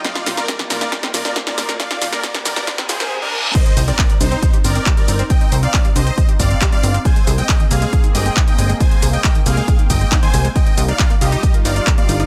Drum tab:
CC |----------------|----------------|x---------------|----------------|
HH |xxoxxxoxxxoxxxox|xxoxxxoxxxox----|xxoxxxoxxxoxxxox|xxoxxxoxxxoxxxox|
SH |xxxxxxxxxxxxxxxx|xxxxxxxxxxxx----|xxxxxxxxxxxxxxxx|xxxxxxxxxxxxxxxx|
CP |----------------|----------------|----x-------x---|----x-------x---|
SD |oooooooooooooooo|oooooooooooo----|----------------|----------------|
BD |o---o---o---o---|o---o---o-o-----|o---o---o---o---|o---o---o-o-o---|

CC |----------------|----------------|----------------|
HH |xxoxxxoxxxoxxxox|xxoxxxoxxxoxxxox|xxoxxxoxxxoxxxox|
SH |xxxxxxxxxxxxxxxx|xxxxxxxxxxxxxxxx|xxxxxxxxxxxxxxxx|
CP |----x-------x---|----x-------x---|----x-------x---|
SD |----------------|----------------|----------------|
BD |o---o---o---o---|o---o---o-o-o---|o---o---o---o---|